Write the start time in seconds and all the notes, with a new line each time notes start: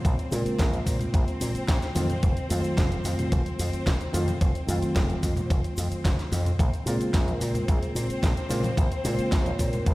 Already playing: C4 C5
0.05 A#1, kick, closed hi-hat, cabasa
0.19 closed hi-hat, cabasa
0.31 A#2 C#3 G#3 A#3 C4 F4 A#4, open hi-hat, cabasa
0.46 A#4, muted slap bass stroke, closed hi-hat, cabasa
0.59 A#1, kick, snare, closed hi-hat, high conga, cabasa
0.74 closed hi-hat, cabasa
0.87 A#2, kick, open hi-hat, cabasa
0.99 closed hi-hat, low conga, cabasa
1.14 A#1, kick, closed hi-hat, cabasa
1.28 closed hi-hat, cabasa
1.41 A#2, open hi-hat, high conga, cabasa
1.55 muted slap bass stroke, closed hi-hat, cabasa
1.68 A#1, kick, snare, closed hi-hat, cabasa
1.82 snare, closed hi-hat, cabasa
1.95 F2 D#3 F#3 A3 C4 F4, open hi-hat, high conga, cabasa
2.09 closed hi-hat, low conga, cabasa
2.23 F1, kick, closed hi-hat, cabasa
2.37 closed hi-hat, cabasa
2.49 F2 D#3 F#3 A3 C4 F4, open hi-hat, cabasa
2.63 closed hi-hat, cabasa
2.64 cabasa
2.77 F1, kick, snare, closed hi-hat, high conga, cabasa
2.92 closed hi-hat, cabasa
3.04 F2, open hi-hat, cabasa
3.19 closed hi-hat, low conga, cabasa
3.32 F1, kick, closed hi-hat, cabasa
3.46 closed hi-hat, cabasa
3.59 F2, open hi-hat, cabasa
3.73 muted slap bass stroke, closed hi-hat, cabasa
3.86 F1, kick, snare, closed hi-hat, cabasa
4.01 closed hi-hat, cabasa
4.13 F2 D#3 F#3 A3 C4 F4, open hi-hat, cabasa
4.28 closed hi-hat, high conga, low conga, cabasa
4.41 F1, kick, closed hi-hat, cabasa
4.55 closed hi-hat, cabasa
4.67 F2 D#3 F#3 A3 C4 F4, open hi-hat, cabasa
4.82 muted slap bass stroke, closed hi-hat, cabasa
4.95 F1, kick, snare, closed hi-hat, high conga, cabasa
5.10 closed hi-hat, cabasa
5.23 F2, kick, open hi-hat, cabasa
5.36 closed hi-hat, low conga, cabasa
5.50 F1, kick, closed hi-hat, cabasa
5.64 closed hi-hat, cabasa
5.76 F2, open hi-hat, high conga, cabasa
5.78 cabasa
5.91 muted slap bass stroke, closed hi-hat, cabasa
6.05 F1, kick, snare, closed hi-hat, cabasa
6.19 snare, closed hi-hat, cabasa
6.32 F2, open hi-hat, high conga, cabasa
6.45 closed hi-hat, low conga, cabasa
6.59 A#1 C4 C5, kick, closed hi-hat, cabasa
6.74 closed hi-hat, cabasa
6.86 A#2 C#3 G#3 A#3 C4 F4 G#4, open hi-hat, cabasa
7.00 closed hi-hat, cabasa
7.14 A#1, kick, snare, closed hi-hat, high conga, cabasa
7.28 A#4, closed hi-hat, cabasa
7.41 A#2 A#4, open hi-hat, cabasa
7.54 closed hi-hat, low conga, cabasa
7.68 A#1 G#4, kick, closed hi-hat, cabasa
7.83 closed hi-hat, cabasa
7.95 A#2, open hi-hat, cabasa
8.09 muted slap bass stroke, closed hi-hat, cabasa
8.23 A#1, kick, snare, closed hi-hat, cabasa
8.37 closed hi-hat, cabasa
8.49 A#2 C#3 G#3 A#3 C4 F4, open hi-hat, cabasa
8.63 closed hi-hat, high conga, low conga, cabasa
8.77 A#1, kick, closed hi-hat, cabasa
8.92 closed hi-hat, cabasa
9.04 A#2 C#3 G#3 A#3 C4 F4, open hi-hat, cabasa
9.18 muted slap bass stroke, closed hi-hat, cabasa
9.32 A#1, kick, snare, closed hi-hat, high conga, cabasa
9.46 C#5, closed hi-hat, cabasa
9.59 A#2 A#4, kick, open hi-hat, cabasa
9.73 A#4, closed hi-hat, low conga, cabasa
9.86 A#1, kick, closed hi-hat, cabasa